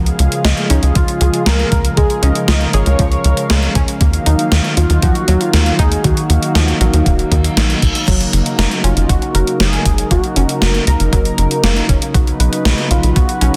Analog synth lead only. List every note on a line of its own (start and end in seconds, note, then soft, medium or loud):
0.70 0.82 D#4 medium
0.95 1.43 F4 medium
1.46 1.94 A#4 loud
1.97 2.23 G#4 loud
2.22 2.47 D#5 loud
2.48 2.72 D#5 loud
2.74 3.71 C#5 medium
4.77 5.01 F4 medium
5.03 5.42 F#4 loud
5.41 5.80 F4 loud
5.79 6.06 G#4 loud
6.05 7.57 F#4 loud
8.85 9.11 F4 medium
9.10 9.60 F#4 medium
9.61 10.08 G#4 loud
10.11 10.64 F#4 loud
10.62 11.12 A#4 loud
11.13 11.85 A#4 loud
12.91 13.14 F4 medium
13.16 13.56 F#4 loud